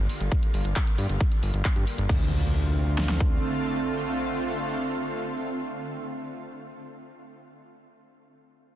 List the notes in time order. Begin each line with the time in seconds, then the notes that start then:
0.09 open hi-hat
0.21 G1, closed hi-hat
0.32 kick, closed hi-hat
0.43 closed hi-hat
0.54 G1, open hi-hat
0.65 G1, closed hi-hat
0.76 kick, clap, closed hi-hat
0.87 closed hi-hat
0.98 G2, open hi-hat
1.09 G1, closed hi-hat
1.20 kick, closed hi-hat
1.32 closed hi-hat
1.43 G1, open hi-hat
1.54 G1, closed hi-hat
1.65 kick, clap, closed hi-hat
1.76 G2, closed hi-hat
1.87 open hi-hat
1.98 G1, closed hi-hat
2.09 D2 D3 A3 C4 F4, kick, crash, impact
2.98 snare
3.09 snare
3.20 kick